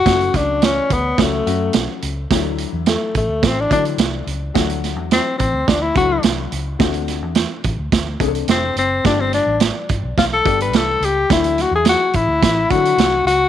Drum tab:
HH |xxx-x-x-x-x-x-x-|x-x-x-x-x-xxx-x-|xxx-x-x-x-x-x-x-|xxx-x-x-x-xxx-x-|
SD |o-o-o---o---o---|o---o---o---o---|o-o-o---o---o---|o-o-o---o---o---|
BD |o-o---o-o-------|o-----o-o-o-----|o-----o-o-o-----|o-----o-o-o-----|

HH |x-x-x-x-x-xxx-x-|xxx-x-x-x-xxx-x-|
SD |o-o-o---o---o---|o-o-o---o---o---|
BD |o-----o-o-o-----|o-----o-o-o-----|